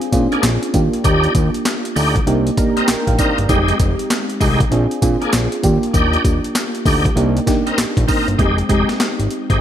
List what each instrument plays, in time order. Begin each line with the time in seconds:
Already playing: fm electric piano C4 D4 F4 G#4
0.02 closed hi-hat
0.12 analog synth bass A#2, fm electric piano C4 C#4 F4 G#4, kick, closed hi-hat, tambourine
0.19 fm electric piano D4
0.32 tonewheel organ A#3 D4 G#4, closed hi-hat
0.43 analog synth bass A#1, snare, clap, closed hi-hat, tambourine
0.63 closed hi-hat
0.74 analog synth bass D#2, fm electric piano A#3 D4 F4 G4, kick, closed hi-hat, tambourine
0.93 closed hi-hat
1.04 analog synth bass D#2, tonewheel organ D4 D#4 G4, kick, closed hi-hat, tambourine
1.24 closed hi-hat
1.35 analog synth bass D#2, kick, closed hi-hat, tambourine
1.54 closed hi-hat
1.65 snare, clap, closed hi-hat, tambourine
1.85 closed hi-hat
1.96 analog synth bass D2, tonewheel organ D4 D#4 G4, open hi-hat, tambourine
2.16 kick, closed hi-hat
2.27 analog synth bass C2, fm electric piano A#3 D4 D#4 G4, closed hi-hat
2.47 closed hi-hat
2.57 fm electric piano A#3 D4 D#4 A#4 A#5, kick, closed hi-hat, tambourine
2.76 tonewheel organ C4 D#4 A#4, closed hi-hat
2.88 analog synth bass A#1, fm electric piano G5, snare, clap, closed hi-hat, tambourine
3.07 analog synth bass A#1, fm electric piano F5, kick, closed hi-hat
3.18 tonewheel organ C4 D#4 A#4, fm electric piano D5, kick, closed hi-hat, tambourine
3.38 analog synth bass G1, closed hi-hat
3.49 analog synth bass F1, tonewheel organ G#3 D#4 G4, fm electric piano G#3 C4 D#4 G4, kick, closed hi-hat, tambourine
3.68 closed hi-hat
3.80 analog synth bass F1, kick, closed hi-hat, tambourine
3.99 closed hi-hat
4.10 snare, clap, closed hi-hat, tambourine
4.30 closed hi-hat
4.40 analog synth bass C2, tonewheel organ G#3 D#4 G4, kick, open hi-hat, tambourine
4.60 kick, closed hi-hat
4.71 analog synth bass A#1, fm electric piano C4 D4 F4 G#4, closed hi-hat
4.91 closed hi-hat
5.02 analog synth bass A#2, fm electric piano C4 D4 F4 G#4, kick, closed hi-hat, tambourine
5.21 tonewheel organ A#3 D4 G#4, closed hi-hat
5.33 analog synth bass A#1, snare, clap, closed hi-hat, tambourine
5.52 closed hi-hat
5.63 analog synth bass D#2, fm electric piano A#3 D4 F4 G4, kick, closed hi-hat, tambourine
5.83 closed hi-hat
5.93 analog synth bass D#2, tonewheel organ D4 D#4 G4, kick, closed hi-hat, tambourine
6.13 closed hi-hat
6.25 analog synth bass D#2, kick, closed hi-hat, tambourine
6.44 closed hi-hat
6.55 snare, clap, closed hi-hat, tambourine
6.75 closed hi-hat
6.86 analog synth bass D2, tonewheel organ D4 D#4 G4, kick, open hi-hat, tambourine
7.05 kick, closed hi-hat
7.16 analog synth bass C2, fm electric piano A#3 D4 D#4 G4, closed hi-hat
7.37 closed hi-hat
7.46 fm electric piano A#3 D4 D#4 G4, kick, snare, closed hi-hat, tambourine
7.66 tonewheel organ C4 D#4 A#4, closed hi-hat
7.78 analog synth bass A#1, snare, clap, closed hi-hat, tambourine
7.97 analog synth bass A#1, kick, closed hi-hat
8.08 tonewheel organ C4 D#4 A#4, kick, open hi-hat, tambourine
8.28 analog synth bass G1, closed hi-hat
8.38 analog synth bass F1, fm electric piano G#3 C4 D#4 G4, tonewheel organ G#3 D#4 G4, kick, closed hi-hat
8.58 closed hi-hat
8.69 analog synth bass F1, tonewheel organ G#3 D#4 G4, fm electric piano G#3 C4 D#4 G4, kick, closed hi-hat
8.89 snare, closed hi-hat
9.00 snare, clap, closed hi-hat
9.19 analog synth bass G#1, closed hi-hat
9.31 closed hi-hat
9.50 analog synth bass G#1, tonewheel organ G#3 D#4 G4, kick, closed hi-hat